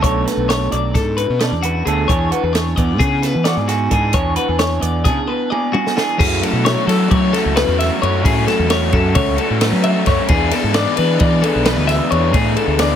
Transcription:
0.03 B1 B2 A3 D4 A4 C#5, kick, closed hi-hat
0.26 D4 B4, snare, closed hi-hat
0.37 B1
0.49 C#5, snare, closed hi-hat
0.72 B1 F#3 D5, closed hi-hat
0.94 G#2 A4, kick, snare, closed hi-hat
1.17 F#2 B4, closed hi-hat
1.30 B2
1.39 D4 D5, snare, closed hi-hat
1.52 E2
1.63 F#4 B4, closed hi-hat
1.86 D2 B2 A3 D4 G#4 A4, closed hi-hat
2.08 E2 E3 D4 G#4 C#5, kick, closed hi-hat
2.31 F#4 B4, closed hi-hat
2.43 E2 G#4
2.53 C#5, snare, closed hi-hat
2.76 E2 B3 D5, kick, closed hi-hat
2.99 C#3 G#4, kick, closed hi-hat
3.22 B2 B4, snare, closed hi-hat
3.35 E3
3.44 F#4 D5, snare, closed hi-hat
3.57 G#2 G#4
3.68 F#4 G#4, snare, closed hi-hat
3.91 G#2 E3 D4 G#4, kick, closed hi-hat
4.13 E2 E3 D4 G#4 C#5, kick, closed hi-hat
4.36 F#4 B4, closed hi-hat
4.48 E2 G#4
4.59 C#5, snare, closed hi-hat
4.81 E2 B3 D5, closed hi-hat
5.05 C#3 D4 G#4, kick, closed hi-hat
5.27 B2 B4
5.50 G#4 D5, high tom
5.73 F#4 G#4, mid tom
5.87 snare
5.95 E3 D4 G#4, snare
6.18 F#2 F#3 A3 C#4 F#4 G#4, kick, crash
6.41 A3 C#4 F#4 A4, ride
6.53 B2
6.64 F#3 A3 C#4 F#4 C#5, snare, ride
6.86 F#3 A3 C#4 F#4 A4, snare, ride
7.11 F#3 C#5, kick, ride
7.32 A3 C#4 F#4 A4, snare, ride
7.46 C#2
7.54 F#3 A3 C#4 F#4 B4, snare, ride
7.68 E2
7.79 E5, snare, ride
7.99 F#2 F#3 A3 C#4 F#4 C#5, ride
8.21 F#3 A3 C#4 F#4
8.25 A2 G#4, kick, ride
8.44 A3 C#4 F#4 A4
8.48 snare, ride
8.59 E2
8.67 F#3 A3 C#4 F#4 C#5, snare, ride
8.90 F#2 A3 C#4 F#4 A4, kick, ride
9.15 C#2 C#5, kick, ride
9.36 A3 C#4 F#4 A4, ride
9.50 A2
9.60 F#3 A3 C#4 F#4 B4, snare, ride
9.72 F#3
9.83 E5, ride
10.05 F#2 F#3 A3 C#4 F#4 C#5, kick, snare, ride
10.27 E2 E3 B3 D4 G#4, kick, ride
10.50 B3 D4 G#4 A4, snare, ride
10.64 G#2
10.73 E3 B3 D4 G#4 D5, snare, ride
10.96 E3 B3 D4 G#4 B4, ride
11.19 E3 D5, kick, ride
11.42 B3 D4 G#4 A4, ride
11.55 B1
11.65 E3 B3 D4 G#4 B4, snare, ride
11.78 D2
11.87 E5, snare, ride
12.11 E2 E3 B3 D4 G#4 C#5, ride
12.33 A2 E3 B3 D4 G#4, kick, ride
12.55 B3 D4 G#4 A4, ride
12.67 D2
12.79 E3 B3 D4 G#4 D5, snare, ride

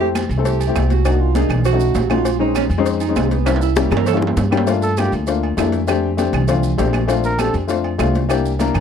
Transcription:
Already playing: F2
0.00 A3 C4 E4 G4, high conga
0.15 cowbell, high conga, low timbale, low agogo, claves, maracas
0.29 C2, high conga, low agogo, maracas
0.38 A3 C4 E4 A4
0.45 G4, cowbell, high conga, maracas
0.60 high conga, low agogo, maracas
0.67 A3 C4 E4 G4
0.75 C2, cowbell, high conga, low timbale, low agogo, claves, maracas
0.90 F#4, cowbell, high conga, maracas
1.05 A#3 D4 D#4 F#4, cowbell, high conga, low agogo, claves, maracas
1.20 F4, high conga
1.35 A#3 D4 D#4 G#4, cowbell, high conga, low timbale, low agogo, maracas
1.49 B1, cowbell, high conga, low conga, low agogo, claves, maracas
1.65 F#4, cowbell, high conga, low agogo, maracas
1.73 A3 C#4 D#4 F#4
1.80 high conga, maracas
1.95 A#1, cowbell, high conga, low timbale, low agogo, maracas
2.10 A3 C#4 D#4 F4 F#4, cowbell, high conga, low agogo, claves, maracas
2.25 cowbell, high conga, low agogo, maracas
2.39 G#3 C4 C#4 D#4, high conga
2.55 C#4, cowbell, high conga, low timbale, low agogo, claves, maracas
2.70 F2, high conga, low agogo, maracas
2.78 G#3 C4 C#4 D#4
2.86 cowbell, high conga, maracas
3.00 D#4, high conga, low agogo, maracas
3.08 G#3 C4 C#4 D#4
3.16 C2 C#4, cowbell, high conga, low timbale, low agogo, claves, maracas
3.31 B3, cowbell, maracas
3.45 G3 A#3 C4 C#4 E4, cowbell, high timbale, low agogo, claves, maracas
3.56 high timbale
3.61 E4, high conga, maracas
3.76 G3 A#3 C#4 E4 G4, cowbell, high bongo, high conga, low agogo, maracas
3.91 G2 A#4, cowbell, high bongo, high conga, low conga, low agogo, claves, maracas
3.97 low timbale
4.06 A4, cowbell, high conga, low timbale, low agogo, maracas
4.13 G3 A#3 C#4 E4
4.17 low timbale
4.22 low bongo, high conga
4.27 low timbale
4.37 G2, cowbell, low bongo, high conga, low timbale, low agogo, maracas
4.51 G3 A#3 C#4 G4, cowbell, low bongo, high conga, low agogo, claves, maracas
4.57 low timbale
4.67 A3 A#3 D4 F4, cowbell, high conga, low agogo, maracas
4.82 A4, maracas
4.97 A3 A#3 D4 F4 G4, cowbell, high conga, low timbale, low agogo, claves, maracas
5.12 D2, high conga, low agogo, maracas
5.27 A3 A#3 D4 F4, cowbell, high conga, maracas
5.43 high conga, low agogo
5.57 F2 A3 A#3 D4 E4, cowbell, high conga, low timbale, low agogo, claves, maracas
5.72 cowbell, high conga, maracas
5.87 A3 C4 D4 G4, cowbell, high conga, low agogo, claves, maracas
6.03 high conga
6.17 A3 C4 D4 G4, cowbell, high conga, low timbale, low agogo, maracas
6.33 C2, cowbell, high conga, low conga, low agogo, claves, maracas
6.48 A3 C4 D4 F4, cowbell, high conga, low conga, low agogo, maracas
6.63 high conga, maracas
6.78 A#1 A3 C4 D4 G4, cowbell, high conga, low timbale, low agogo, maracas
6.93 cowbell, high conga, low agogo, claves, maracas
7.08 A3 C4 D4 F4, cowbell, high conga, low agogo, maracas
7.24 A#4, maracas
7.38 A3 C4 D4 G4 A4, cowbell, high conga, low timbale, low agogo, claves, maracas
7.54 F2, high conga, low agogo, maracas
7.68 A3 C4 D4 F4, cowbell, high conga, maracas
7.84 high conga, low agogo
7.98 C2 A3 C4 D4 F4, cowbell, high conga, low timbale, low agogo, claves, maracas
8.15 cowbell, high conga, maracas
8.29 A#3 D4 E4 G4, cowbell, low agogo, claves, maracas
8.46 high conga, maracas
8.59 A#3 D4 E4 A#4, cowbell, high conga, low timbale, low agogo, maracas
8.74 G2, cowbell, high conga, low conga, low agogo, claves, maracas

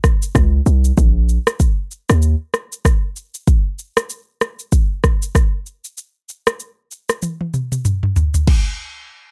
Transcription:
0.04 kick, cross-stick, shaker
0.22 shaker
0.35 C#2, kick, cross-stick, shaker
0.66 C2, shaker
0.84 shaker
0.97 A#1, kick, shaker
1.29 shaker
1.47 cross-stick, shaker
1.60 kick, shaker
1.91 shaker
2.09 D#2, cross-stick, shaker
2.22 shaker
2.54 cross-stick, shaker
2.72 shaker
2.85 kick, cross-stick, shaker
3.16 shaker
3.34 shaker
3.47 kick, shaker
3.79 shaker
3.97 cross-stick, shaker
4.10 shaker
4.41 cross-stick, shaker
4.59 shaker
4.72 kick, shaker
5.04 kick, cross-stick, shaker
5.22 shaker
5.35 kick, cross-stick, shaker
5.66 shaker
5.84 shaker
5.97 shaker
6.29 shaker
6.47 cross-stick, shaker
6.60 shaker
6.91 shaker
7.09 cross-stick, shaker
7.22 high tom, shaker
7.41 high tom
7.54 mid tom, shaker
7.72 mid tom, shaker
7.85 mid tom, shaker
8.03 mid tom
8.16 floor tom, shaker
8.34 floor tom, shaker
8.47 kick, crash

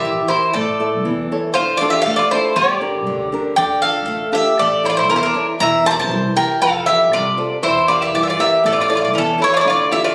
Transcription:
Already playing: E4 G4 A#4 E5
0.04 A#1 E3
0.28 E4 G4 A#4 C5
0.53 A1 A3 A4 D5
0.80 E4 A4 E5
1.04 E2 E3
1.32 E4 A4 C#5
1.54 D2 D3 F4 C5
1.77 D4 F4 D5
1.81 F4 A4
1.90 G4 E5
2.02 A1 F5
2.06 A3 A4
2.16 F4 D5
2.31 D4 E4 F4 A4 C5
2.56 G1 G3 G4 D5
2.81 D4 G4 A#4
3.07 D2 D3
3.32 D4 G4 A#4
3.56 D2 D3 D5 G5
3.82 D4 F4 A4 F5
4.08 A1 A3
4.32 D4 F4 G4 A4 E5
4.59 A1 A3 A4 D5
4.83 E4 A4 C5 C#5
4.89 F4 D5
4.97 E4 C5
5.09 E2 E3 C#4 A#4
5.16 E4 C5
5.23 D4 A#4
5.34 E4 A4 C#5
5.60 E1 E3 E5 A#5
5.84 E4 G4 A#4 C5 A5
5.91 D5 A#5
6.00 C5 A5
6.11 C2 E3
6.36 E4 G4 A#4 G5
6.62 F1 F3 A4 F5
6.86 F4 G4 A4 C5 E5
7.13 C2 C3 F4 D5
7.37 F4 A4 C5
7.62 E1 E3 E4 C5
7.88 E4 F4 G4 A#4 D5
8.02 G4 E5
8.14 G1 E3 G4 D5
8.23 G4 E5
8.27 F4 D5
8.39 E4 G4 A#4 E5
8.64 A1 A3 A4 D5
8.73 F4 D5
8.80 F4 D5
8.88 E4 F4 A4 C#5 D5
8.96 F4 D5
9.01 F4 D5
9.14 E2 E3 C#4
9.18 A4
9.38 E4 A4 C#5
9.44 C#5
9.54 F4 D5
9.60 E4 C#5
9.65 D2 D3 F4
9.70 D5
9.91 D4 E4 F4 G4 E5
10.04 F4 D5

